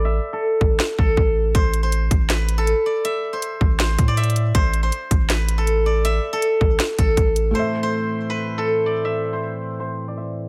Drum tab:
HH |------------------------|x--x--x--x--x--x--x-----|x-----x-----x--x--xxxx--|x--x--x--x--x--x--x-----|
SD |------------o-----------|------------o-----------|------------o-----------|------------o-----------|
BD |---------o-----o--o-----|o--------o--------------|---------o-----o--------|o--------o--------------|

HH |x-----x-----x--x--x--x--|------------------------|------------------------|
SD |------------o-----------|------------------------|------------------------|
BD |---------o-----o--o-----|------------------------|------------------------|